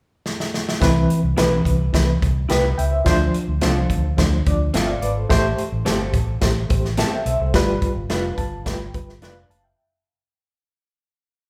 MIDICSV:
0, 0, Header, 1, 5, 480
1, 0, Start_track
1, 0, Key_signature, 0, "major"
1, 0, Tempo, 560748
1, 698, Time_signature, 4, 2, 24, 8
1, 9836, End_track
2, 0, Start_track
2, 0, Title_t, "Reed electric piano"
2, 0, Program_c, 0, 4
2, 688, Note_on_c, 0, 52, 101
2, 693, Note_on_c, 0, 60, 91
2, 701, Note_on_c, 0, 71, 110
2, 1017, Note_off_c, 0, 52, 0
2, 1020, Note_off_c, 0, 60, 0
2, 1024, Note_off_c, 0, 71, 0
2, 1169, Note_on_c, 0, 52, 75
2, 1173, Note_on_c, 0, 60, 70
2, 1182, Note_on_c, 0, 71, 77
2, 1499, Note_off_c, 0, 52, 0
2, 1500, Note_off_c, 0, 60, 0
2, 1505, Note_off_c, 0, 71, 0
2, 1651, Note_on_c, 0, 52, 70
2, 1661, Note_on_c, 0, 60, 69
2, 1667, Note_on_c, 0, 71, 80
2, 1818, Note_off_c, 0, 52, 0
2, 1823, Note_off_c, 0, 60, 0
2, 1825, Note_off_c, 0, 71, 0
2, 2136, Note_on_c, 0, 83, 58
2, 2141, Note_on_c, 0, 79, 48
2, 2366, Note_off_c, 0, 83, 0
2, 2367, Note_off_c, 0, 79, 0
2, 2377, Note_on_c, 0, 79, 70
2, 2383, Note_on_c, 0, 76, 59
2, 2483, Note_off_c, 0, 76, 0
2, 2493, Note_off_c, 0, 79, 0
2, 2493, Note_on_c, 0, 76, 58
2, 2499, Note_on_c, 0, 72, 50
2, 2608, Note_on_c, 0, 53, 101
2, 2610, Note_off_c, 0, 72, 0
2, 2615, Note_on_c, 0, 62, 91
2, 2620, Note_on_c, 0, 72, 112
2, 2725, Note_off_c, 0, 76, 0
2, 2938, Note_off_c, 0, 53, 0
2, 2941, Note_off_c, 0, 62, 0
2, 2944, Note_off_c, 0, 72, 0
2, 3096, Note_on_c, 0, 53, 77
2, 3105, Note_on_c, 0, 62, 65
2, 3109, Note_on_c, 0, 72, 85
2, 3422, Note_off_c, 0, 53, 0
2, 3426, Note_off_c, 0, 62, 0
2, 3428, Note_off_c, 0, 72, 0
2, 3569, Note_on_c, 0, 53, 76
2, 3573, Note_on_c, 0, 62, 72
2, 3584, Note_on_c, 0, 72, 84
2, 3736, Note_off_c, 0, 53, 0
2, 3738, Note_off_c, 0, 62, 0
2, 3743, Note_off_c, 0, 72, 0
2, 3819, Note_on_c, 0, 53, 69
2, 3825, Note_on_c, 0, 62, 64
2, 3828, Note_on_c, 0, 74, 77
2, 3981, Note_off_c, 0, 53, 0
2, 3984, Note_off_c, 0, 62, 0
2, 3986, Note_off_c, 0, 74, 0
2, 4060, Note_on_c, 0, 79, 59
2, 4067, Note_on_c, 0, 76, 50
2, 4169, Note_on_c, 0, 77, 71
2, 4173, Note_off_c, 0, 79, 0
2, 4176, Note_on_c, 0, 74, 57
2, 4177, Note_off_c, 0, 76, 0
2, 4285, Note_off_c, 0, 74, 0
2, 4288, Note_off_c, 0, 77, 0
2, 4295, Note_on_c, 0, 74, 68
2, 4303, Note_on_c, 0, 71, 59
2, 4411, Note_off_c, 0, 74, 0
2, 4415, Note_off_c, 0, 71, 0
2, 4419, Note_on_c, 0, 72, 60
2, 4423, Note_on_c, 0, 69, 48
2, 4532, Note_on_c, 0, 57, 107
2, 4533, Note_off_c, 0, 72, 0
2, 4538, Note_on_c, 0, 67, 96
2, 4543, Note_on_c, 0, 72, 114
2, 4648, Note_off_c, 0, 69, 0
2, 4858, Note_off_c, 0, 57, 0
2, 4861, Note_off_c, 0, 67, 0
2, 4864, Note_off_c, 0, 72, 0
2, 5007, Note_on_c, 0, 57, 78
2, 5013, Note_on_c, 0, 67, 73
2, 5018, Note_on_c, 0, 72, 88
2, 5335, Note_off_c, 0, 57, 0
2, 5338, Note_off_c, 0, 67, 0
2, 5341, Note_off_c, 0, 72, 0
2, 5486, Note_on_c, 0, 57, 74
2, 5490, Note_on_c, 0, 67, 70
2, 5496, Note_on_c, 0, 72, 85
2, 5652, Note_off_c, 0, 57, 0
2, 5655, Note_off_c, 0, 67, 0
2, 5657, Note_off_c, 0, 72, 0
2, 5730, Note_on_c, 0, 57, 67
2, 5737, Note_on_c, 0, 67, 64
2, 5740, Note_on_c, 0, 72, 76
2, 5894, Note_off_c, 0, 57, 0
2, 5898, Note_off_c, 0, 67, 0
2, 5899, Note_off_c, 0, 72, 0
2, 5974, Note_on_c, 0, 81, 55
2, 6088, Note_off_c, 0, 81, 0
2, 6100, Note_on_c, 0, 79, 65
2, 6105, Note_on_c, 0, 76, 58
2, 6207, Note_off_c, 0, 76, 0
2, 6211, Note_off_c, 0, 79, 0
2, 6217, Note_on_c, 0, 76, 68
2, 6221, Note_on_c, 0, 72, 59
2, 6330, Note_off_c, 0, 76, 0
2, 6332, Note_off_c, 0, 72, 0
2, 6344, Note_on_c, 0, 72, 54
2, 6351, Note_on_c, 0, 69, 49
2, 6453, Note_on_c, 0, 55, 102
2, 6463, Note_on_c, 0, 65, 92
2, 6467, Note_on_c, 0, 71, 112
2, 6567, Note_off_c, 0, 72, 0
2, 6571, Note_off_c, 0, 69, 0
2, 6777, Note_off_c, 0, 55, 0
2, 6781, Note_off_c, 0, 65, 0
2, 6783, Note_off_c, 0, 71, 0
2, 6934, Note_on_c, 0, 55, 75
2, 6939, Note_on_c, 0, 65, 68
2, 6947, Note_on_c, 0, 71, 80
2, 7172, Note_on_c, 0, 81, 65
2, 7257, Note_off_c, 0, 55, 0
2, 7259, Note_off_c, 0, 65, 0
2, 7263, Note_off_c, 0, 71, 0
2, 7395, Note_off_c, 0, 81, 0
2, 7407, Note_on_c, 0, 55, 75
2, 7413, Note_on_c, 0, 65, 67
2, 7415, Note_on_c, 0, 79, 64
2, 7418, Note_on_c, 0, 71, 79
2, 7571, Note_off_c, 0, 55, 0
2, 7575, Note_off_c, 0, 65, 0
2, 7577, Note_off_c, 0, 71, 0
2, 7654, Note_on_c, 0, 55, 69
2, 7655, Note_on_c, 0, 65, 58
2, 7661, Note_on_c, 0, 71, 74
2, 7815, Note_off_c, 0, 55, 0
2, 7815, Note_off_c, 0, 65, 0
2, 7818, Note_off_c, 0, 71, 0
2, 7860, Note_off_c, 0, 79, 0
2, 7892, Note_on_c, 0, 77, 63
2, 7902, Note_on_c, 0, 74, 47
2, 8125, Note_off_c, 0, 74, 0
2, 8126, Note_off_c, 0, 77, 0
2, 8135, Note_on_c, 0, 81, 68
2, 8137, Note_on_c, 0, 77, 56
2, 8247, Note_off_c, 0, 81, 0
2, 8248, Note_off_c, 0, 77, 0
2, 8251, Note_on_c, 0, 79, 58
2, 8256, Note_on_c, 0, 76, 49
2, 8480, Note_off_c, 0, 79, 0
2, 8482, Note_off_c, 0, 76, 0
2, 9836, End_track
3, 0, Start_track
3, 0, Title_t, "Clean electric guitar"
3, 0, Program_c, 1, 27
3, 1171, Note_on_c, 1, 64, 68
3, 1176, Note_on_c, 1, 67, 78
3, 1182, Note_on_c, 1, 71, 79
3, 1279, Note_off_c, 1, 64, 0
3, 1282, Note_off_c, 1, 67, 0
3, 1285, Note_off_c, 1, 71, 0
3, 2129, Note_on_c, 1, 64, 68
3, 2139, Note_on_c, 1, 67, 77
3, 2141, Note_on_c, 1, 71, 78
3, 2239, Note_off_c, 1, 64, 0
3, 2244, Note_off_c, 1, 67, 0
3, 2245, Note_off_c, 1, 71, 0
3, 3095, Note_on_c, 1, 60, 69
3, 3104, Note_on_c, 1, 65, 73
3, 3109, Note_on_c, 1, 69, 76
3, 3202, Note_off_c, 1, 60, 0
3, 3206, Note_off_c, 1, 65, 0
3, 3209, Note_off_c, 1, 69, 0
3, 4055, Note_on_c, 1, 60, 72
3, 4064, Note_on_c, 1, 65, 73
3, 4070, Note_on_c, 1, 69, 73
3, 4161, Note_off_c, 1, 60, 0
3, 4165, Note_off_c, 1, 65, 0
3, 4169, Note_off_c, 1, 69, 0
3, 5011, Note_on_c, 1, 60, 73
3, 5014, Note_on_c, 1, 67, 87
3, 5020, Note_on_c, 1, 69, 92
3, 5118, Note_off_c, 1, 60, 0
3, 5119, Note_off_c, 1, 67, 0
3, 5123, Note_off_c, 1, 69, 0
3, 5970, Note_on_c, 1, 60, 74
3, 5977, Note_on_c, 1, 67, 76
3, 5983, Note_on_c, 1, 69, 84
3, 6076, Note_off_c, 1, 60, 0
3, 6080, Note_off_c, 1, 67, 0
3, 6083, Note_off_c, 1, 69, 0
3, 6931, Note_on_c, 1, 62, 70
3, 6937, Note_on_c, 1, 65, 67
3, 6944, Note_on_c, 1, 71, 81
3, 7036, Note_off_c, 1, 62, 0
3, 7039, Note_off_c, 1, 65, 0
3, 7043, Note_off_c, 1, 71, 0
3, 7892, Note_on_c, 1, 62, 76
3, 7899, Note_on_c, 1, 65, 77
3, 7903, Note_on_c, 1, 71, 85
3, 7996, Note_off_c, 1, 62, 0
3, 7999, Note_off_c, 1, 65, 0
3, 8002, Note_off_c, 1, 71, 0
3, 9836, End_track
4, 0, Start_track
4, 0, Title_t, "Fingered electric bass"
4, 0, Program_c, 2, 33
4, 696, Note_on_c, 2, 36, 95
4, 883, Note_off_c, 2, 36, 0
4, 1055, Note_on_c, 2, 36, 86
4, 1149, Note_off_c, 2, 36, 0
4, 1413, Note_on_c, 2, 36, 79
4, 1602, Note_off_c, 2, 36, 0
4, 1659, Note_on_c, 2, 36, 82
4, 1845, Note_off_c, 2, 36, 0
4, 1902, Note_on_c, 2, 36, 74
4, 2087, Note_off_c, 2, 36, 0
4, 2141, Note_on_c, 2, 36, 81
4, 2327, Note_off_c, 2, 36, 0
4, 2382, Note_on_c, 2, 37, 77
4, 2567, Note_off_c, 2, 37, 0
4, 2621, Note_on_c, 2, 38, 93
4, 2806, Note_off_c, 2, 38, 0
4, 2979, Note_on_c, 2, 38, 78
4, 3072, Note_off_c, 2, 38, 0
4, 3103, Note_on_c, 2, 36, 81
4, 3287, Note_off_c, 2, 36, 0
4, 3335, Note_on_c, 2, 38, 78
4, 3522, Note_off_c, 2, 38, 0
4, 3581, Note_on_c, 2, 38, 92
4, 3766, Note_off_c, 2, 38, 0
4, 3824, Note_on_c, 2, 38, 82
4, 4008, Note_off_c, 2, 38, 0
4, 4052, Note_on_c, 2, 31, 78
4, 4240, Note_off_c, 2, 31, 0
4, 4300, Note_on_c, 2, 32, 82
4, 4484, Note_off_c, 2, 32, 0
4, 4542, Note_on_c, 2, 33, 97
4, 4725, Note_off_c, 2, 33, 0
4, 4898, Note_on_c, 2, 33, 94
4, 4991, Note_off_c, 2, 33, 0
4, 5019, Note_on_c, 2, 31, 79
4, 5253, Note_off_c, 2, 31, 0
4, 5253, Note_on_c, 2, 33, 87
4, 5439, Note_off_c, 2, 33, 0
4, 5495, Note_on_c, 2, 33, 86
4, 5681, Note_off_c, 2, 33, 0
4, 5738, Note_on_c, 2, 33, 77
4, 6015, Note_off_c, 2, 33, 0
4, 6211, Note_on_c, 2, 35, 80
4, 6305, Note_off_c, 2, 35, 0
4, 6335, Note_on_c, 2, 36, 77
4, 6427, Note_off_c, 2, 36, 0
4, 6456, Note_on_c, 2, 31, 96
4, 6640, Note_off_c, 2, 31, 0
4, 6813, Note_on_c, 2, 31, 84
4, 6905, Note_off_c, 2, 31, 0
4, 6922, Note_on_c, 2, 29, 85
4, 7112, Note_off_c, 2, 29, 0
4, 7168, Note_on_c, 2, 31, 81
4, 7355, Note_off_c, 2, 31, 0
4, 7412, Note_on_c, 2, 31, 82
4, 7597, Note_off_c, 2, 31, 0
4, 7656, Note_on_c, 2, 31, 78
4, 7840, Note_off_c, 2, 31, 0
4, 7886, Note_on_c, 2, 29, 82
4, 8074, Note_off_c, 2, 29, 0
4, 8128, Note_on_c, 2, 30, 76
4, 8315, Note_off_c, 2, 30, 0
4, 9836, End_track
5, 0, Start_track
5, 0, Title_t, "Drums"
5, 221, Note_on_c, 9, 38, 67
5, 306, Note_off_c, 9, 38, 0
5, 344, Note_on_c, 9, 38, 73
5, 430, Note_off_c, 9, 38, 0
5, 465, Note_on_c, 9, 38, 77
5, 551, Note_off_c, 9, 38, 0
5, 588, Note_on_c, 9, 38, 93
5, 674, Note_off_c, 9, 38, 0
5, 698, Note_on_c, 9, 36, 108
5, 700, Note_on_c, 9, 42, 74
5, 705, Note_on_c, 9, 38, 99
5, 784, Note_off_c, 9, 36, 0
5, 785, Note_off_c, 9, 42, 0
5, 791, Note_off_c, 9, 38, 0
5, 941, Note_on_c, 9, 42, 69
5, 1027, Note_off_c, 9, 42, 0
5, 1176, Note_on_c, 9, 42, 85
5, 1181, Note_on_c, 9, 38, 104
5, 1261, Note_off_c, 9, 42, 0
5, 1267, Note_off_c, 9, 38, 0
5, 1415, Note_on_c, 9, 36, 80
5, 1421, Note_on_c, 9, 42, 70
5, 1501, Note_off_c, 9, 36, 0
5, 1507, Note_off_c, 9, 42, 0
5, 1659, Note_on_c, 9, 36, 76
5, 1662, Note_on_c, 9, 42, 78
5, 1665, Note_on_c, 9, 38, 102
5, 1744, Note_off_c, 9, 36, 0
5, 1748, Note_off_c, 9, 42, 0
5, 1751, Note_off_c, 9, 38, 0
5, 1904, Note_on_c, 9, 36, 87
5, 1905, Note_on_c, 9, 42, 74
5, 1989, Note_off_c, 9, 36, 0
5, 1991, Note_off_c, 9, 42, 0
5, 2135, Note_on_c, 9, 42, 89
5, 2148, Note_on_c, 9, 38, 96
5, 2220, Note_off_c, 9, 42, 0
5, 2234, Note_off_c, 9, 38, 0
5, 2385, Note_on_c, 9, 42, 68
5, 2470, Note_off_c, 9, 42, 0
5, 2616, Note_on_c, 9, 42, 79
5, 2619, Note_on_c, 9, 36, 104
5, 2621, Note_on_c, 9, 38, 101
5, 2701, Note_off_c, 9, 42, 0
5, 2705, Note_off_c, 9, 36, 0
5, 2707, Note_off_c, 9, 38, 0
5, 2861, Note_on_c, 9, 42, 70
5, 2946, Note_off_c, 9, 42, 0
5, 3092, Note_on_c, 9, 42, 86
5, 3097, Note_on_c, 9, 38, 99
5, 3177, Note_off_c, 9, 42, 0
5, 3183, Note_off_c, 9, 38, 0
5, 3337, Note_on_c, 9, 36, 81
5, 3340, Note_on_c, 9, 42, 68
5, 3422, Note_off_c, 9, 36, 0
5, 3425, Note_off_c, 9, 42, 0
5, 3579, Note_on_c, 9, 42, 81
5, 3580, Note_on_c, 9, 36, 84
5, 3582, Note_on_c, 9, 38, 107
5, 3665, Note_off_c, 9, 36, 0
5, 3665, Note_off_c, 9, 42, 0
5, 3668, Note_off_c, 9, 38, 0
5, 3820, Note_on_c, 9, 42, 77
5, 3823, Note_on_c, 9, 36, 88
5, 3905, Note_off_c, 9, 42, 0
5, 3909, Note_off_c, 9, 36, 0
5, 4055, Note_on_c, 9, 42, 90
5, 4068, Note_on_c, 9, 38, 94
5, 4140, Note_off_c, 9, 42, 0
5, 4154, Note_off_c, 9, 38, 0
5, 4298, Note_on_c, 9, 42, 67
5, 4384, Note_off_c, 9, 42, 0
5, 4538, Note_on_c, 9, 42, 75
5, 4539, Note_on_c, 9, 36, 104
5, 4544, Note_on_c, 9, 38, 105
5, 4624, Note_off_c, 9, 42, 0
5, 4625, Note_off_c, 9, 36, 0
5, 4630, Note_off_c, 9, 38, 0
5, 4778, Note_on_c, 9, 42, 73
5, 4864, Note_off_c, 9, 42, 0
5, 5014, Note_on_c, 9, 42, 87
5, 5019, Note_on_c, 9, 38, 96
5, 5099, Note_off_c, 9, 42, 0
5, 5105, Note_off_c, 9, 38, 0
5, 5251, Note_on_c, 9, 42, 72
5, 5253, Note_on_c, 9, 36, 83
5, 5336, Note_off_c, 9, 42, 0
5, 5338, Note_off_c, 9, 36, 0
5, 5489, Note_on_c, 9, 42, 83
5, 5492, Note_on_c, 9, 38, 103
5, 5495, Note_on_c, 9, 36, 83
5, 5575, Note_off_c, 9, 42, 0
5, 5578, Note_off_c, 9, 38, 0
5, 5581, Note_off_c, 9, 36, 0
5, 5733, Note_on_c, 9, 42, 74
5, 5739, Note_on_c, 9, 36, 88
5, 5819, Note_off_c, 9, 42, 0
5, 5824, Note_off_c, 9, 36, 0
5, 5863, Note_on_c, 9, 38, 31
5, 5949, Note_off_c, 9, 38, 0
5, 5968, Note_on_c, 9, 42, 88
5, 5982, Note_on_c, 9, 38, 102
5, 6054, Note_off_c, 9, 42, 0
5, 6067, Note_off_c, 9, 38, 0
5, 6213, Note_on_c, 9, 42, 65
5, 6299, Note_off_c, 9, 42, 0
5, 6453, Note_on_c, 9, 42, 80
5, 6454, Note_on_c, 9, 36, 103
5, 6458, Note_on_c, 9, 38, 103
5, 6538, Note_off_c, 9, 42, 0
5, 6540, Note_off_c, 9, 36, 0
5, 6544, Note_off_c, 9, 38, 0
5, 6692, Note_on_c, 9, 42, 71
5, 6694, Note_on_c, 9, 36, 80
5, 6778, Note_off_c, 9, 42, 0
5, 6780, Note_off_c, 9, 36, 0
5, 6930, Note_on_c, 9, 42, 88
5, 6935, Note_on_c, 9, 38, 100
5, 7015, Note_off_c, 9, 42, 0
5, 7020, Note_off_c, 9, 38, 0
5, 7171, Note_on_c, 9, 36, 79
5, 7173, Note_on_c, 9, 42, 68
5, 7257, Note_off_c, 9, 36, 0
5, 7259, Note_off_c, 9, 42, 0
5, 7412, Note_on_c, 9, 42, 78
5, 7413, Note_on_c, 9, 36, 78
5, 7415, Note_on_c, 9, 38, 105
5, 7498, Note_off_c, 9, 42, 0
5, 7499, Note_off_c, 9, 36, 0
5, 7500, Note_off_c, 9, 38, 0
5, 7653, Note_on_c, 9, 42, 74
5, 7656, Note_on_c, 9, 36, 94
5, 7739, Note_off_c, 9, 42, 0
5, 7742, Note_off_c, 9, 36, 0
5, 7782, Note_on_c, 9, 38, 33
5, 7868, Note_off_c, 9, 38, 0
5, 7891, Note_on_c, 9, 42, 91
5, 7904, Note_on_c, 9, 38, 100
5, 7976, Note_off_c, 9, 42, 0
5, 7990, Note_off_c, 9, 38, 0
5, 8138, Note_on_c, 9, 42, 67
5, 8224, Note_off_c, 9, 42, 0
5, 9836, End_track
0, 0, End_of_file